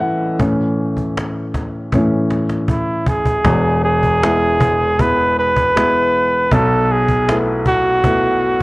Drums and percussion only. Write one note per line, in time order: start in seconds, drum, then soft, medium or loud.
0.40 cajon bass loud
0.97 cajon bass medium
1.17 cajon slap medium
1.54 cajon bass medium
1.92 cajon bass medium
1.92 cajon slap medium
2.30 cajon slap medium
2.49 cajon slap medium
2.68 cajon bass medium
3.07 cajon bass medium
3.26 cajon bass medium
3.45 cajon bass loud
4.03 cajon bass medium
4.23 cajon slap loud
4.60 cajon bass medium
4.99 cajon bass loud
5.56 cajon bass medium
5.77 cajon slap loud
6.52 cajon bass loud
7.08 cajon bass medium
7.29 cajon slap loud
7.66 cajon bass medium
8.04 cajon bass loud